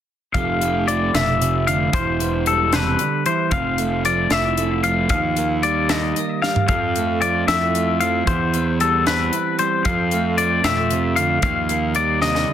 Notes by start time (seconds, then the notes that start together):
0.34 F1 F2 F3 A3 G4 F5, kick, closed hi-hat
0.61 A3, closed hi-hat
0.88 F3 D5, closed hi-hat
1.14 F1 B2 E5, snare, closed hi-hat
1.41 C3, closed hi-hat
1.67 D3 F5, closed hi-hat
1.93 E1 E3 C5, kick, closed hi-hat
2.20 B3, closed hi-hat
2.46 G3 A4, closed hi-hat
2.73 C3 B4, snare, closed hi-hat
2.99 D3, closed hi-hat
3.26 E3 C5, closed hi-hat
3.51 F1 F2 F5, kick, closed hi-hat
3.78 A3, closed hi-hat
4.05 F3 D5, closed hi-hat
4.30 F1 E4 E5, snare, closed hi-hat
4.57 A3, closed hi-hat
4.84 F3 F5, closed hi-hat
5.09 D#2 D#3 F5, kick, closed hi-hat
5.37 A#3, closed hi-hat
5.63 G3 D5, closed hi-hat
5.89 D#5, snare, closed hi-hat
6.16 A#3, closed hi-hat
6.42 G3 F5, snare
6.56 floor tom
6.68 F2 F5, kick, closed hi-hat
6.96 A3, closed hi-hat
7.22 F3 D5, closed hi-hat
7.48 F2 E4 E5, snare, closed hi-hat
7.75 A3, closed hi-hat
8.00 F3 F5, closed hi-hat
8.27 E2 E3 C5, kick, closed hi-hat
8.54 B3, closed hi-hat
8.80 G3 A4, closed hi-hat
9.07 C4 B4, snare, closed hi-hat
9.33 B3, closed hi-hat
9.59 G3 C5, closed hi-hat
9.85 F2 F5, kick, closed hi-hat
10.11 A3, closed hi-hat
10.38 F3 D5, closed hi-hat
10.64 F2 B2 E5, snare, closed hi-hat
10.90 C3, closed hi-hat
11.16 D3 F5, closed hi-hat
11.42 D#2 D#3 F5, kick, closed hi-hat
11.69 A#3, closed hi-hat
11.95 G3 D5, closed hi-hat
12.21 C3 D#5, snare
12.35 snare
12.49 D3